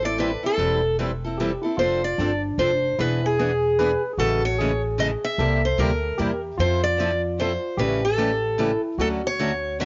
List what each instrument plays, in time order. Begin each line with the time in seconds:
Already playing: upright bass A1, tine electric piano A4
0.03 steel-string acoustic guitar C4 E4 A4 D5
0.18 steel-string acoustic guitar E3 G3 C4 E4 A4 B4
0.43 steel-string acoustic guitar C4 E4 A4
0.58 upright bass E1, steel-string acoustic guitar E3 G3 C4 E4 A4
0.99 steel-string acoustic guitar E3 G3 C4 E4 A4
1.24 steel-string acoustic guitar C4 E4 A4
1.38 steel-string acoustic guitar E3 G3 C4 E4 A4, tine electric piano G4
1.62 steel-string acoustic guitar C4 E4 A4, tine electric piano E4
1.77 upright bass F1, steel-string acoustic guitar F3 C4 D4 A4 C5, tine electric piano F4
2.04 steel-string acoustic guitar D5
2.18 upright bass G1, steel-string acoustic guitar F3 C4 D4 A4, tine electric piano D4
2.58 upright bass F1, steel-string acoustic guitar F3 C4 D4 A4 C5
2.98 upright bass E1, steel-string acoustic guitar E3 B3 D4 G#4 B4, tine electric piano E4
3.26 steel-string acoustic guitar G#4
3.39 steel-string acoustic guitar E3 B3 D4 G#4 B4, tine electric piano G#4
3.79 steel-string acoustic guitar E3 B3 D4 G#4 B4, tine electric piano B4
4.13 tine electric piano G#4
4.17 upright bass A1, steel-string acoustic guitar C#3 E3 G#3 A3 C#4 E4 G#4 A4, tine electric piano F#4
4.45 steel-string acoustic guitar C#5
4.58 steel-string acoustic guitar C#3 E3 G#3 A3 C#4 E4 G#4 A4, tine electric piano G#4
4.98 steel-string acoustic guitar C#3 E3 G#3 A3 C#4 E4 G#4 A4 D#5
5.25 steel-string acoustic guitar E5
5.38 upright bass C2, steel-string acoustic guitar C3 G3 A#3 E4 G4, tine electric piano A4
5.65 steel-string acoustic guitar C5
5.78 upright bass D2, steel-string acoustic guitar C3 G3 A#3 E4 G4 A#4
6.18 upright bass E2, steel-string acoustic guitar C3 G3 A#3 E4 G4, tine electric piano G4
6.57 upright bass F2, steel-string acoustic guitar F3 C4 E4 A4 C5, tine electric piano F4
6.84 steel-string acoustic guitar D5
7.00 steel-string acoustic guitar F3 C4 E4 A4
7.40 steel-string acoustic guitar F3 C4 E4 A4 C5
7.77 upright bass A1, steel-string acoustic guitar C#3 E3 G3 A3 C#4 E4 G4 A4 B4, tine electric piano G4
8.05 steel-string acoustic guitar A4
8.18 steel-string acoustic guitar C#3 E3 G3 A3 C#4 E4 G4 A4
8.58 steel-string acoustic guitar C#3 E3 G3 A3 C#4 E4 G4 A4, tine electric piano E4
8.98 upright bass D2, steel-string acoustic guitar D3 F#3 A3 C#4 F#4 A4, tine electric piano F#4
9.27 steel-string acoustic guitar C#5
9.39 steel-string acoustic guitar D3 F#3 A3 C#4 F#4 A4
9.80 steel-string acoustic guitar D3 F#3 A3 C#4 F#4 A4 E5